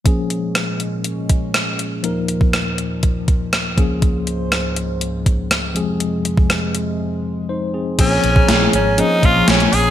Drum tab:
CC |----------------|----------------|----------------|----------------|
HH |x-x-x-x-x-x-x-x-|x-x-x-x-x-x-x-x-|x-x-x-x-x-x-x-x-|x-x-x-x---------|
SD |----r-------r---|----r-------r---|----r-------r---|----r-----------|
BD |o---------o-----|---o----o-o---o-|o---------o-----|---o------------|

CC |x---------------|
HH |x-x-x-x-x-x-xxo-|
SD |----o-------o---|
BD |o--o------o-----|